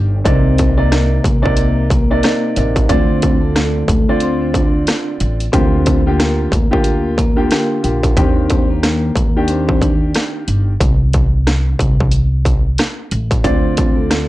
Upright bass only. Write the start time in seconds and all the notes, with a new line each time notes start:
Already playing: G1
0.26 C2
1.25 C2
2.57 A1
2.90 D2
3.88 D2
5.21 A1
5.53 D2
6.52 D2
7.84 A#1
8.17 D#2
9.16 D#2
10.48 G1
10.81 C2
11.79 C2
13.12 A1
13.44 D2